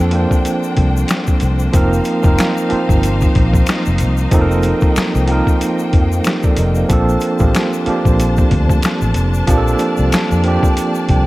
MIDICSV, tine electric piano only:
0, 0, Header, 1, 2, 480
1, 0, Start_track
1, 0, Key_signature, -2, "major"
1, 0, Tempo, 645161
1, 1292, Time_signature, 4, 2, 24, 8
1, 8383, End_track
2, 0, Start_track
2, 0, Title_t, "Tine electric piano"
2, 0, Program_c, 0, 4
2, 0, Control_c, 0, 64, 127
2, 0, Note_on_c, 0, 53, 109
2, 0, Note_on_c, 0, 58, 89
2, 0, Note_on_c, 0, 60, 96
2, 0, Note_on_c, 0, 62, 89
2, 0, Note_on_c, 0, 69, 111
2, 83, Note_off_c, 0, 53, 0
2, 83, Note_on_c, 0, 53, 81
2, 92, Note_off_c, 0, 58, 0
2, 92, Note_on_c, 0, 58, 77
2, 98, Note_off_c, 0, 60, 0
2, 98, Note_on_c, 0, 60, 73
2, 107, Note_off_c, 0, 62, 0
2, 107, Note_on_c, 0, 62, 77
2, 114, Note_on_c, 0, 72, 92
2, 983, Note_off_c, 0, 53, 0
2, 987, Note_off_c, 0, 58, 0
2, 991, Note_off_c, 0, 60, 0
2, 995, Note_off_c, 0, 62, 0
2, 999, Note_off_c, 0, 72, 0
2, 1282, Note_on_c, 0, 53, 99
2, 1290, Note_on_c, 0, 58, 93
2, 1299, Note_on_c, 0, 60, 96
2, 1303, Control_c, 0, 64, 0
2, 1305, Note_off_c, 0, 69, 0
2, 1307, Note_on_c, 0, 63, 82
2, 1315, Note_on_c, 0, 70, 113
2, 1425, Control_c, 0, 64, 127
2, 1632, Note_off_c, 0, 53, 0
2, 1636, Note_off_c, 0, 58, 0
2, 1640, Note_off_c, 0, 60, 0
2, 1644, Note_off_c, 0, 63, 0
2, 1648, Note_off_c, 0, 70, 0
2, 1661, Note_on_c, 0, 53, 80
2, 1668, Note_on_c, 0, 58, 72
2, 1678, Note_on_c, 0, 60, 73
2, 1684, Note_on_c, 0, 63, 72
2, 1693, Note_on_c, 0, 70, 90
2, 1984, Note_off_c, 0, 53, 0
2, 1988, Note_off_c, 0, 58, 0
2, 1993, Note_off_c, 0, 60, 0
2, 1995, Note_off_c, 0, 63, 0
2, 2000, Note_off_c, 0, 70, 0
2, 2001, Note_on_c, 0, 53, 89
2, 2009, Note_on_c, 0, 58, 70
2, 2019, Note_on_c, 0, 60, 83
2, 2025, Note_on_c, 0, 63, 68
2, 2034, Note_on_c, 0, 72, 90
2, 2902, Note_off_c, 0, 53, 0
2, 2906, Note_off_c, 0, 58, 0
2, 2911, Note_off_c, 0, 60, 0
2, 2914, Note_off_c, 0, 63, 0
2, 2918, Note_off_c, 0, 72, 0
2, 3207, Note_on_c, 0, 53, 99
2, 3213, Note_on_c, 0, 58, 88
2, 3221, Note_on_c, 0, 60, 92
2, 3230, Note_on_c, 0, 63, 101
2, 3238, Note_on_c, 0, 69, 91
2, 3280, Note_off_c, 0, 69, 0
2, 3284, Note_on_c, 0, 70, 114
2, 3881, Note_off_c, 0, 53, 0
2, 3884, Note_off_c, 0, 58, 0
2, 3888, Note_off_c, 0, 60, 0
2, 3893, Note_off_c, 0, 63, 0
2, 3920, Note_off_c, 0, 70, 0
2, 3922, Note_on_c, 0, 53, 87
2, 3931, Note_on_c, 0, 58, 77
2, 3939, Note_on_c, 0, 60, 75
2, 3948, Note_on_c, 0, 63, 75
2, 3953, Note_on_c, 0, 70, 90
2, 4661, Note_on_c, 0, 72, 62
2, 4663, Note_off_c, 0, 70, 0
2, 4667, Note_on_c, 0, 67, 54
2, 4787, Note_off_c, 0, 72, 0
2, 4790, Note_off_c, 0, 67, 0
2, 4799, Note_on_c, 0, 74, 68
2, 4803, Note_on_c, 0, 69, 61
2, 4822, Note_off_c, 0, 53, 0
2, 4827, Note_off_c, 0, 58, 0
2, 4831, Note_off_c, 0, 60, 0
2, 4835, Note_off_c, 0, 63, 0
2, 4892, Note_off_c, 0, 74, 0
2, 4895, Note_off_c, 0, 69, 0
2, 4903, Note_on_c, 0, 75, 59
2, 4908, Note_on_c, 0, 70, 54
2, 5028, Note_off_c, 0, 75, 0
2, 5030, Note_off_c, 0, 70, 0
2, 5039, Note_on_c, 0, 77, 51
2, 5042, Note_on_c, 0, 72, 47
2, 5124, Note_on_c, 0, 53, 102
2, 5133, Note_on_c, 0, 58, 93
2, 5141, Control_c, 0, 64, 0
2, 5141, Note_on_c, 0, 60, 90
2, 5150, Note_on_c, 0, 62, 85
2, 5157, Note_on_c, 0, 69, 105
2, 5256, Control_c, 0, 64, 127
2, 5262, Note_off_c, 0, 77, 0
2, 5264, Note_off_c, 0, 72, 0
2, 5473, Note_off_c, 0, 53, 0
2, 5477, Note_off_c, 0, 58, 0
2, 5481, Note_off_c, 0, 60, 0
2, 5486, Note_off_c, 0, 62, 0
2, 5489, Note_off_c, 0, 69, 0
2, 5501, Note_on_c, 0, 53, 82
2, 5509, Note_on_c, 0, 58, 69
2, 5517, Note_on_c, 0, 60, 72
2, 5525, Note_on_c, 0, 62, 65
2, 5533, Note_on_c, 0, 67, 85
2, 5824, Note_off_c, 0, 53, 0
2, 5828, Note_off_c, 0, 58, 0
2, 5832, Note_off_c, 0, 60, 0
2, 5836, Note_off_c, 0, 62, 0
2, 5840, Note_off_c, 0, 67, 0
2, 5847, Note_on_c, 0, 53, 80
2, 5854, Note_on_c, 0, 58, 75
2, 5862, Note_on_c, 0, 60, 75
2, 5870, Note_on_c, 0, 62, 74
2, 5878, Note_on_c, 0, 67, 91
2, 6745, Note_off_c, 0, 53, 0
2, 6748, Note_off_c, 0, 58, 0
2, 6752, Note_off_c, 0, 60, 0
2, 6756, Note_off_c, 0, 62, 0
2, 6761, Note_off_c, 0, 67, 0
2, 7043, Note_on_c, 0, 53, 103
2, 7051, Note_on_c, 0, 58, 90
2, 7060, Note_on_c, 0, 60, 86
2, 7069, Note_on_c, 0, 62, 98
2, 7077, Note_on_c, 0, 67, 98
2, 7120, Note_off_c, 0, 67, 0
2, 7125, Note_on_c, 0, 69, 105
2, 7719, Note_off_c, 0, 53, 0
2, 7723, Note_off_c, 0, 58, 0
2, 7728, Note_off_c, 0, 60, 0
2, 7732, Note_off_c, 0, 62, 0
2, 7760, Note_off_c, 0, 69, 0
2, 7763, Note_on_c, 0, 53, 77
2, 7773, Note_on_c, 0, 58, 69
2, 7779, Note_on_c, 0, 60, 82
2, 7788, Note_on_c, 0, 62, 70
2, 7796, Note_on_c, 0, 67, 96
2, 8263, Note_on_c, 0, 79, 72
2, 8383, Note_off_c, 0, 53, 0
2, 8383, Note_off_c, 0, 58, 0
2, 8383, Note_off_c, 0, 60, 0
2, 8383, Note_off_c, 0, 62, 0
2, 8383, Note_off_c, 0, 67, 0
2, 8383, Note_off_c, 0, 79, 0
2, 8383, End_track
0, 0, End_of_file